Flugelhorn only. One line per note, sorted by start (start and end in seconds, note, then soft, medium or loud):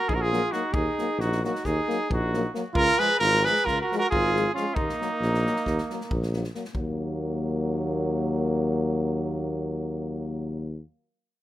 0.00 0.11 F#4 medium
0.10 0.17 D#4 medium
0.16 0.25 F#4 medium
0.24 0.54 F4 medium
0.53 0.73 D#4 medium
0.73 1.20 D#4 medium
1.20 1.43 D#4 medium
1.44 1.66 D#4 medium
1.66 2.10 D#4 medium
2.11 2.49 D#4 medium
2.73 3.00 F4 loud
2.99 3.20 G#4 medium
3.20 3.45 F4 medium
3.43 3.67 G#4 medium
3.66 3.81 F4 loud
3.81 3.96 F#4 medium
3.98 4.10 F#4 loud
4.11 4.52 F4 loud
4.54 4.76 C#4 medium
4.75 6.34 A#3 medium